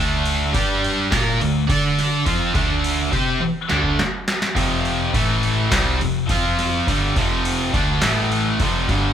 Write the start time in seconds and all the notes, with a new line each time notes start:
Already playing: D2 D3
0.00 A3 D4
0.25 crash
0.54 G2 G3 D4 G4, kick, crash
0.84 crash
1.12 A#2 A#3 F4 A#4, kick, snare, crash
1.41 D2 D3 A3, crash
1.69 D3 D4 A4 D5, kick, crash
1.99 snare, crash
2.25 F2 F3 C4 F4, kick, crash
2.54 D2 D3 A3 D4, kick, crash
2.84 crash
3.12 C3 C4 G4 C5, kick, crash
3.40 muted distorted electric guitar stroke, muted overdriven electric guitar stroke, muted picked electric bass stroke, high tom
3.69 D2 D3 A3 D4, snare
3.84 kick
3.99 snare
4.28 snare
4.42 snare
4.55 F1 F2 C3 F3, kick, crash
4.85 crash
5.12 A1 A2 E3 A3, kick, crash
5.43 crash
5.71 C2 C3 G3 C4, kick, snare, crash
6.00 F1 F2 C3, crash
6.29 F2 F3 C4 F4, kick, crash
6.59 snare, crash
6.87 G1 G2 D3 G3, kick, crash
7.16 F1 F2 C3 F3, kick, crash
7.45 crash
7.74 D2 D3 A3 D4, kick, crash
8.02 A1 A2 E3 A3, snare, crash
8.32 crash
8.60 F1 F2 C3 F3, kick, crash
8.89 G1 G2 D3 G3, kick, snare, crash